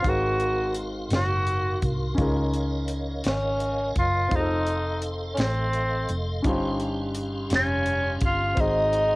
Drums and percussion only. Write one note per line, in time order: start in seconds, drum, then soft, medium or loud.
0.04 kick medium
0.04 closed hi-hat medium
0.40 closed hi-hat soft
0.75 closed hi-hat medium
1.10 snare medium
1.10 closed hi-hat medium
1.47 closed hi-hat soft
1.82 kick medium
1.82 closed hi-hat medium
2.18 kick medium
2.18 closed hi-hat medium
2.54 closed hi-hat soft
2.88 closed hi-hat medium
3.24 snare medium
3.24 closed hi-hat medium
3.60 closed hi-hat soft
3.96 kick medium
3.96 closed hi-hat medium
4.31 kick medium
4.31 closed hi-hat medium
4.67 closed hi-hat soft
5.02 closed hi-hat medium
5.37 snare medium
5.37 closed hi-hat medium
5.73 closed hi-hat soft
6.09 closed hi-hat medium
6.44 kick medium
6.44 closed hi-hat medium
6.80 closed hi-hat soft
7.15 closed hi-hat medium
7.50 snare medium
7.50 closed hi-hat medium
7.86 closed hi-hat soft
8.21 kick medium
8.21 closed hi-hat medium
8.57 kick medium
8.57 closed hi-hat medium
8.93 closed hi-hat soft